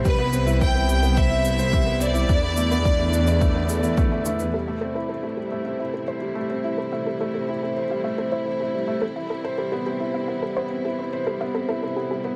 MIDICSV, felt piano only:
0, 0, Header, 1, 2, 480
1, 0, Start_track
1, 0, Key_signature, 0, "minor"
1, 0, Tempo, 560748
1, 49, Time_signature, 4, 2, 24, 8
1, 10579, End_track
2, 0, Start_track
2, 0, Title_t, "Felt piano"
2, 0, Program_c, 0, 0
2, 0, Control_c, 0, 64, 127
2, 38, Note_on_c, 0, 55, 87
2, 60, Control_c, 0, 64, 0
2, 157, Note_off_c, 0, 55, 0
2, 160, Note_on_c, 0, 59, 98
2, 194, Control_c, 0, 64, 127
2, 233, Note_off_c, 0, 59, 0
2, 278, Note_on_c, 0, 60, 92
2, 396, Note_on_c, 0, 64, 106
2, 398, Note_off_c, 0, 60, 0
2, 517, Note_off_c, 0, 64, 0
2, 520, Note_on_c, 0, 60, 73
2, 637, Note_on_c, 0, 59, 80
2, 638, Note_off_c, 0, 60, 0
2, 757, Note_off_c, 0, 59, 0
2, 758, Note_on_c, 0, 55, 78
2, 832, Note_off_c, 0, 55, 0
2, 880, Note_on_c, 0, 59, 101
2, 953, Note_off_c, 0, 59, 0
2, 994, Note_on_c, 0, 60, 84
2, 1115, Note_off_c, 0, 60, 0
2, 1116, Note_on_c, 0, 64, 75
2, 1237, Note_off_c, 0, 64, 0
2, 1240, Note_on_c, 0, 60, 70
2, 1313, Note_off_c, 0, 60, 0
2, 1359, Note_on_c, 0, 72, 99
2, 1432, Note_off_c, 0, 72, 0
2, 1479, Note_on_c, 0, 55, 90
2, 1597, Note_on_c, 0, 59, 93
2, 1598, Note_off_c, 0, 55, 0
2, 1671, Note_off_c, 0, 59, 0
2, 1715, Note_on_c, 0, 60, 95
2, 1833, Note_on_c, 0, 64, 102
2, 1836, Note_off_c, 0, 60, 0
2, 1952, Note_on_c, 0, 62, 76
2, 1955, Note_off_c, 0, 64, 0
2, 1980, Control_c, 0, 64, 0
2, 2073, Note_on_c, 0, 59, 71
2, 2074, Note_off_c, 0, 62, 0
2, 2137, Control_c, 0, 64, 127
2, 2195, Note_off_c, 0, 59, 0
2, 2196, Note_on_c, 0, 57, 68
2, 2271, Note_off_c, 0, 57, 0
2, 2322, Note_on_c, 0, 59, 98
2, 2394, Note_off_c, 0, 59, 0
2, 2440, Note_on_c, 0, 62, 82
2, 2558, Note_off_c, 0, 62, 0
2, 2561, Note_on_c, 0, 64, 74
2, 2679, Note_off_c, 0, 64, 0
2, 2683, Note_on_c, 0, 62, 79
2, 2754, Note_off_c, 0, 62, 0
2, 2803, Note_on_c, 0, 74, 103
2, 2874, Note_off_c, 0, 74, 0
2, 2918, Note_on_c, 0, 57, 95
2, 3037, Note_off_c, 0, 57, 0
2, 3039, Note_on_c, 0, 59, 94
2, 3112, Note_off_c, 0, 59, 0
2, 3159, Note_on_c, 0, 69, 68
2, 3277, Note_on_c, 0, 64, 72
2, 3278, Note_off_c, 0, 69, 0
2, 3351, Note_off_c, 0, 64, 0
2, 3401, Note_on_c, 0, 57, 89
2, 3511, Note_off_c, 0, 57, 0
2, 3524, Note_on_c, 0, 57, 86
2, 3631, Note_off_c, 0, 57, 0
2, 3644, Note_on_c, 0, 57, 73
2, 3761, Note_off_c, 0, 57, 0
2, 3761, Note_on_c, 0, 71, 72
2, 3833, Note_off_c, 0, 71, 0
2, 3882, Note_on_c, 0, 55, 74
2, 3899, Control_c, 0, 64, 0
2, 3999, Note_off_c, 0, 55, 0
2, 4004, Note_on_c, 0, 57, 74
2, 4058, Control_c, 0, 64, 127
2, 4075, Note_off_c, 0, 57, 0
2, 4118, Note_on_c, 0, 60, 71
2, 4238, Note_off_c, 0, 60, 0
2, 4242, Note_on_c, 0, 64, 76
2, 4359, Note_on_c, 0, 60, 59
2, 4360, Note_off_c, 0, 64, 0
2, 4475, Note_on_c, 0, 57, 56
2, 4478, Note_off_c, 0, 60, 0
2, 4596, Note_off_c, 0, 57, 0
2, 4598, Note_on_c, 0, 55, 60
2, 4672, Note_off_c, 0, 55, 0
2, 4722, Note_on_c, 0, 57, 76
2, 4794, Note_off_c, 0, 57, 0
2, 4845, Note_on_c, 0, 60, 65
2, 4961, Note_off_c, 0, 60, 0
2, 4963, Note_on_c, 0, 64, 57
2, 5079, Note_on_c, 0, 60, 59
2, 5080, Note_off_c, 0, 64, 0
2, 5152, Note_off_c, 0, 60, 0
2, 5200, Note_on_c, 0, 72, 78
2, 5273, Note_off_c, 0, 72, 0
2, 5321, Note_on_c, 0, 55, 75
2, 5438, Note_on_c, 0, 57, 75
2, 5439, Note_off_c, 0, 55, 0
2, 5512, Note_off_c, 0, 57, 0
2, 5563, Note_on_c, 0, 60, 78
2, 5680, Note_off_c, 0, 60, 0
2, 5683, Note_on_c, 0, 64, 77
2, 5800, Note_off_c, 0, 64, 0
2, 5802, Note_on_c, 0, 60, 60
2, 5919, Note_off_c, 0, 60, 0
2, 5922, Note_on_c, 0, 57, 62
2, 6040, Note_off_c, 0, 57, 0
2, 6045, Note_on_c, 0, 55, 56
2, 6116, Note_off_c, 0, 55, 0
2, 6167, Note_on_c, 0, 57, 82
2, 6236, Note_off_c, 0, 57, 0
2, 6290, Note_on_c, 0, 60, 64
2, 6403, Note_off_c, 0, 60, 0
2, 6407, Note_on_c, 0, 64, 66
2, 6522, Note_off_c, 0, 64, 0
2, 6524, Note_on_c, 0, 60, 63
2, 6595, Note_off_c, 0, 60, 0
2, 6646, Note_on_c, 0, 72, 73
2, 6716, Note_off_c, 0, 72, 0
2, 6764, Note_on_c, 0, 55, 74
2, 6880, Note_off_c, 0, 55, 0
2, 6882, Note_on_c, 0, 57, 79
2, 6954, Note_off_c, 0, 57, 0
2, 7003, Note_on_c, 0, 60, 80
2, 7118, Note_on_c, 0, 64, 84
2, 7120, Note_off_c, 0, 60, 0
2, 7237, Note_off_c, 0, 64, 0
2, 7241, Note_on_c, 0, 60, 61
2, 7359, Note_off_c, 0, 60, 0
2, 7360, Note_on_c, 0, 57, 55
2, 7478, Note_off_c, 0, 57, 0
2, 7480, Note_on_c, 0, 55, 60
2, 7553, Note_off_c, 0, 55, 0
2, 7598, Note_on_c, 0, 57, 81
2, 7672, Note_off_c, 0, 57, 0
2, 7721, Note_on_c, 0, 60, 66
2, 7738, Control_c, 0, 64, 0
2, 7839, Note_off_c, 0, 60, 0
2, 7841, Note_on_c, 0, 64, 66
2, 7900, Control_c, 0, 64, 127
2, 7959, Note_off_c, 0, 64, 0
2, 7968, Note_on_c, 0, 60, 54
2, 8037, Note_off_c, 0, 60, 0
2, 8084, Note_on_c, 0, 72, 83
2, 8155, Note_off_c, 0, 72, 0
2, 8203, Note_on_c, 0, 55, 78
2, 8320, Note_off_c, 0, 55, 0
2, 8320, Note_on_c, 0, 59, 85
2, 8393, Note_off_c, 0, 59, 0
2, 8442, Note_on_c, 0, 60, 86
2, 8558, Note_on_c, 0, 64, 80
2, 8559, Note_off_c, 0, 60, 0
2, 8677, Note_off_c, 0, 64, 0
2, 8685, Note_on_c, 0, 60, 66
2, 8801, Note_off_c, 0, 60, 0
2, 8804, Note_on_c, 0, 59, 59
2, 8919, Note_on_c, 0, 55, 62
2, 8921, Note_off_c, 0, 59, 0
2, 8992, Note_off_c, 0, 55, 0
2, 9042, Note_on_c, 0, 59, 80
2, 9114, Note_off_c, 0, 59, 0
2, 9161, Note_on_c, 0, 60, 60
2, 9279, Note_off_c, 0, 60, 0
2, 9286, Note_on_c, 0, 64, 56
2, 9401, Note_off_c, 0, 64, 0
2, 9405, Note_on_c, 0, 60, 63
2, 9475, Note_off_c, 0, 60, 0
2, 9524, Note_on_c, 0, 72, 81
2, 9595, Note_off_c, 0, 72, 0
2, 9644, Note_on_c, 0, 55, 78
2, 9760, Note_off_c, 0, 55, 0
2, 9765, Note_on_c, 0, 59, 84
2, 9835, Note_off_c, 0, 59, 0
2, 9880, Note_on_c, 0, 60, 68
2, 9999, Note_off_c, 0, 60, 0
2, 10002, Note_on_c, 0, 64, 82
2, 10119, Note_off_c, 0, 64, 0
2, 10122, Note_on_c, 0, 60, 60
2, 10239, Note_off_c, 0, 60, 0
2, 10241, Note_on_c, 0, 59, 65
2, 10359, Note_off_c, 0, 59, 0
2, 10363, Note_on_c, 0, 55, 65
2, 10434, Note_off_c, 0, 55, 0
2, 10480, Note_on_c, 0, 59, 77
2, 10553, Note_off_c, 0, 59, 0
2, 10579, End_track
0, 0, End_of_file